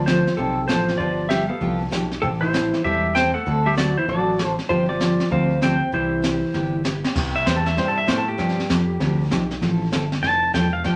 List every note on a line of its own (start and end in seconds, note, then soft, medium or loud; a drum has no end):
0.00 0.26 D2 medium
0.06 0.18 D3 medium
0.06 0.18 F3 medium
0.06 0.37 F3 medium
0.06 0.19 C4 medium
0.06 0.19 D4 medium
0.06 0.36 F4 medium
0.06 0.19 A4 medium
0.06 0.37 C5 medium
0.06 snare medium
0.06 hi-hat pedal medium
0.27 snare soft
0.37 0.64 B1 medium
0.37 0.67 C3 medium
0.37 0.59 D3 medium
0.37 0.59 F3 medium
0.37 0.59 C4 medium
0.37 0.67 C4 medium
0.37 0.59 D4 medium
0.37 0.67 A4 medium
0.37 0.59 A4 medium
0.37 brush sweep soft
0.37 kick soft
0.68 0.95 A1 medium
0.68 0.80 D3 medium
0.68 0.80 F3 medium
0.68 0.98 F3 medium
0.68 0.80 C4 medium
0.68 0.80 D4 medium
0.68 0.97 F4 medium
0.68 0.81 A4 medium
0.68 0.97 C5 medium
0.68 snare medium
0.68 hi-hat pedal medium
0.88 snare soft
0.98 1.49 G1 loud
0.98 1.20 D3 medium
0.98 1.20 F3 medium
0.98 1.29 F3 medium
0.98 1.21 B3 medium
0.98 1.21 D4 medium
0.98 1.28 F4 medium
0.98 1.21 G4 medium
0.98 1.31 D5 medium
0.98 brush sweep medium
0.98 kick soft
1.29 1.41 D3 medium
1.29 1.42 F3 medium
1.29 1.49 G3 medium
1.29 1.42 B3 medium
1.29 1.42 D4 medium
1.29 1.48 G4 medium
1.29 1.42 G4 medium
1.29 1.48 E5 medium
1.29 snare medium
1.29 hi-hat pedal medium
1.49 1.79 B3 medium
1.49 1.78 A4 medium
1.49 1.78 F5 medium
1.60 1.87 C2 medium
1.60 1.82 D3 medium
1.60 1.82 F3 medium
1.60 1.82 B3 medium
1.60 1.82 D4 medium
1.60 1.82 G4 medium
1.60 brush sweep soft
1.60 kick soft
1.91 2.18 B1 medium
1.91 2.03 D3 medium
1.91 2.03 F3 medium
1.91 2.03 B3 medium
1.91 2.04 D4 medium
1.91 2.04 G4 medium
1.91 snare medium
1.91 hi-hat pedal medium
2.11 snare soft
2.22 2.72 A1 medium
2.22 2.28 C3 medium
2.22 2.43 E3 medium
2.22 2.43 G3 medium
2.22 2.43 C4 medium
2.22 2.28 C4 medium
2.22 2.44 E4 medium
2.22 2.27 A4 medium
2.22 2.44 A4 medium
2.22 brush sweep soft
2.22 kick soft
2.41 2.82 E3 medium
2.41 2.81 E4 medium
2.41 2.85 C5 medium
2.53 2.65 E3 medium
2.53 2.65 G3 medium
2.53 2.65 C4 medium
2.53 2.65 E4 medium
2.53 2.65 A4 medium
2.53 snare medium
2.53 hi-hat pedal medium
2.74 snare soft
2.84 3.34 E1 medium
2.84 3.05 E3 medium
2.84 3.05 G3 medium
2.84 3.14 G3 medium
2.84 3.05 C4 medium
2.84 3.05 E4 medium
2.84 3.14 G4 medium
2.84 3.06 A4 medium
2.84 3.16 E5 medium
2.84 brush sweep soft
2.84 kick soft
3.15 3.26 E3 medium
3.15 3.27 G3 medium
3.15 3.27 C4 medium
3.15 3.35 C4 medium
3.15 3.27 E4 medium
3.15 3.27 A4 medium
3.15 3.34 C5 medium
3.15 3.34 G5 loud
3.15 snare medium
3.15 hi-hat pedal soft
3.34 3.66 A3 medium
3.34 3.63 A4 medium
3.34 3.66 F#5 loud
3.46 3.96 D2 loud
3.46 3.67 D3 medium
3.46 3.67 A3 medium
3.46 3.67 C4 medium
3.46 3.67 F#4 medium
3.46 3.67 A4 medium
3.46 brush sweep medium
3.46 kick soft
3.66 3.77 G3 medium
3.66 3.77 G4 medium
3.66 3.77 E5 medium
3.76 3.88 D3 medium
3.76 3.98 F#3 medium
3.76 3.88 A3 medium
3.76 3.89 C4 medium
3.76 3.89 F#4 medium
3.76 3.96 F#4 medium
3.76 3.89 A4 medium
3.76 3.97 D5 medium
3.76 snare medium
3.76 hi-hat pedal medium
3.98 4.08 E3 medium
3.98 4.08 E4 medium
3.98 4.09 C5 medium
4.08 4.57 A1 medium
4.08 4.28 D3 medium
4.08 4.55 F#3 medium
4.08 4.29 A3 medium
4.08 4.29 C4 medium
4.08 4.29 F#4 medium
4.08 4.55 F#4 medium
4.08 4.29 A4 medium
4.08 4.55 D5 loud
4.08 brush sweep soft
4.08 kick soft
4.38 4.50 D3 medium
4.38 4.50 A3 medium
4.38 4.50 C4 medium
4.38 4.51 F#4 medium
4.38 4.51 A4 medium
4.38 snare medium
4.38 hi-hat pedal medium
4.59 snare soft
4.69 5.19 G1 medium
4.69 4.90 C3 medium
4.69 4.90 F3 medium
4.69 4.88 F3 medium
4.69 4.90 C4 medium
4.69 4.91 D4 medium
4.69 4.88 F4 medium
4.69 4.91 G4 medium
4.69 4.89 C5 medium
4.69 brush sweep soft
4.69 kick soft
4.89 5.29 F3 medium
4.89 5.28 F4 medium
4.89 5.32 D5 loud
5.00 5.11 C3 medium
5.00 5.12 F3 medium
5.00 5.12 C4 medium
5.00 5.12 D4 medium
5.00 5.12 G4 medium
5.00 snare medium
5.00 hi-hat pedal medium
5.20 snare soft
5.30 5.80 D2 medium
5.30 5.51 C3 medium
5.30 5.51 F3 medium
5.30 5.52 C4 medium
5.30 5.60 C4 medium
5.30 5.52 D4 medium
5.30 5.52 G4 medium
5.30 5.60 C5 medium
5.30 5.60 F5 medium
5.30 brush sweep soft
5.30 kick soft
5.61 5.73 C3 medium
5.61 5.73 F3 medium
5.61 5.73 C4 medium
5.61 5.91 C4 medium
5.61 5.73 D4 medium
5.61 5.74 G4 medium
5.61 5.91 C5 medium
5.61 5.94 G5 medium
5.61 snare medium
5.61 hi-hat pedal medium
5.92 6.42 C2 loud
5.92 6.13 C3 medium
5.92 6.82 E3 medium
5.92 6.13 G3 medium
5.92 6.13 B3 medium
5.92 6.13 E4 medium
5.92 6.81 E4 medium
5.92 6.13 G4 medium
5.92 6.82 C5 medium
5.92 brush sweep soft
5.92 kick soft
6.22 6.34 C3 medium
6.22 6.35 G3 medium
6.22 6.35 B3 medium
6.22 6.35 E4 medium
6.22 6.35 G4 medium
6.22 snare medium
6.22 hi-hat pedal medium
6.53 7.03 G1 medium
6.53 6.74 C3 medium
6.53 6.75 G3 medium
6.53 6.75 B3 medium
6.53 6.75 E4 medium
6.53 6.75 G4 medium
6.53 snare soft
6.84 6.96 C3 medium
6.84 6.96 G3 medium
6.84 6.96 B3 medium
6.84 6.96 E4 medium
6.84 6.96 G4 medium
6.84 snare medium
6.84 hi-hat pedal medium
7.04 snare medium
7.14 7.45 C2 medium
7.14 7.36 C3 medium
7.14 7.36 G3 medium
7.14 7.36 B3 medium
7.14 7.36 E4 medium
7.14 7.36 G4 medium
7.14 brush sweep medium
7.14 kick medium
7.14 snare soft
7.14 crash medium
7.36 7.46 E5 medium
7.46 7.76 E2 medium
7.46 7.58 C3 medium
7.46 7.58 G3 medium
7.46 7.58 B3 medium
7.46 7.58 E4 medium
7.46 7.58 G4 medium
7.46 7.56 C5 medium
7.46 kick soft
7.46 snare medium
7.46 hi-hat pedal medium
7.56 7.66 A4 medium
7.66 7.77 E5 medium
7.66 snare soft
7.76 8.07 G2 medium
7.76 7.97 C3 medium
7.76 7.98 G3 medium
7.76 7.98 B3 medium
7.76 7.98 E4 medium
7.76 7.98 G4 medium
7.76 7.88 C5 medium
7.76 brush sweep soft
7.76 kick soft
7.76 snare soft
7.88 7.98 A4 medium
7.98 8.08 E5 medium
8.06 8.38 A2 medium
8.06 8.19 C3 medium
8.06 8.19 G3 medium
8.06 8.19 B3 medium
8.06 8.19 E4 medium
8.06 8.19 G4 medium
8.06 8.18 C5 medium
8.06 kick soft
8.06 snare medium
8.06 hi-hat pedal medium
8.18 8.28 A4 medium
8.28 9.18 G4 loud
8.37 8.69 G2 medium
8.37 8.59 C3 medium
8.37 8.59 F3 medium
8.37 8.59 C4 medium
8.37 8.59 D4 medium
8.37 8.60 G4 medium
8.37 brush sweep soft
8.37 kick soft
8.37 snare soft
8.49 snare soft
8.59 snare soft
8.70 8.99 F2 medium
8.70 8.81 C3 medium
8.70 8.81 F3 medium
8.70 8.81 C4 medium
8.70 8.81 D4 medium
8.70 8.82 G4 medium
8.70 kick soft
8.70 snare medium
8.70 hi-hat pedal medium
9.00 9.30 D2 medium
9.00 9.21 C3 medium
9.00 9.21 F3 medium
9.00 9.21 C4 medium
9.00 9.21 D4 medium
9.00 9.21 G4 medium
9.00 brush sweep soft
9.00 kick soft
9.00 snare soft
9.30 9.61 B1 medium
9.30 9.42 C3 medium
9.30 9.42 F3 medium
9.30 9.43 C4 medium
9.30 9.43 D4 medium
9.30 9.43 G4 medium
9.30 kick soft
9.30 snare medium
9.30 hi-hat pedal medium
9.51 snare soft
9.61 9.92 A1 medium
9.61 9.82 F3 medium
9.61 9.82 C4 medium
9.61 9.82 E4 medium
9.61 9.83 A4 medium
9.61 brush sweep medium
9.61 kick soft
9.61 snare soft
9.92 10.22 G1 medium
9.92 10.04 F3 medium
9.92 10.04 C4 medium
9.92 10.04 E4 medium
9.92 10.04 A4 medium
9.92 kick soft
9.92 snare medium
9.92 hi-hat pedal medium
10.12 snare soft
10.23 10.53 F1 loud
10.23 10.44 F3 medium
10.23 10.44 C4 medium
10.23 10.44 E4 medium
10.23 10.45 A4 medium
10.23 10.53 A5 loud
10.23 brush sweep soft
10.23 kick soft
10.23 snare soft
10.53 10.84 E1 medium
10.53 10.65 F3 medium
10.53 10.65 C4 medium
10.53 10.66 E4 medium
10.53 10.66 A4 medium
10.53 10.73 G5 medium
10.53 kick soft
10.53 snare medium
10.53 hi-hat pedal medium
10.73 10.84 F5 medium
10.84 10.96 G1 medium
10.84 10.96 D3 medium
10.84 10.96 F3 medium
10.84 10.96 B3 medium
10.84 10.96 D4 medium
10.84 10.96 G4 medium
10.84 10.96 G5 medium
10.84 brush sweep medium
10.84 kick soft
10.84 snare soft